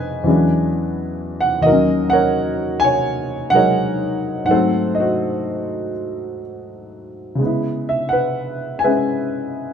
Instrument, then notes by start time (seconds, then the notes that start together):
grand piano
Already playing: F2 D#3 G#3 B3 G#4 B4 D#5 F5 G#5
0.24 E2 E3 F#3 G#3 C#4
0.28 D4
1.41 F#5
1.61 D#2 D#5
1.66 D#3 F#3 F#4 A#4
1.72 C#4
2.10 A#4 C#5 F#5
2.80 G#5
2.84 C#5
3.50 F#3 G#3 F#5
3.55 D#4 A#4 C#5
4.45 G#2 F#5
4.49 F#3 A3 A4 C5
4.56 C4
4.95 D#5
5.00 F#4 C5
7.35 C#3 G#3
7.42 B3
7.46 E4
7.89 E5
8.09 B4 F#5
8.79 G#5
8.84 G#3 C#4 B4 E5